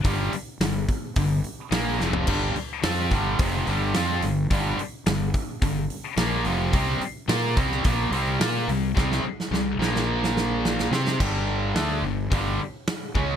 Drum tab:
CC |----------------|x---------------|----------------|----------------|
HH |o-o-o-o-o-o-o---|--o-o-o-o-o-o-o-|o-o-o-o-o-o-o-o-|o-o-o-o-o-o-o-o-|
SD |----o-------o-o-|----o-------o---|----o-------o---|----o--o----o---|
FT |---------------o|----------------|----------------|----------------|
BD |o-----o-o-------|o-----o-o-------|o-----o-o-------|o-----o-o-------|

CC |----------------|x---------------|
HH |----------------|----o---o---o---|
SD |oo-oo-oo-oo-oooo|----o-------o---|
FT |----------------|----------------|
BD |o---------------|o-------o-----o-|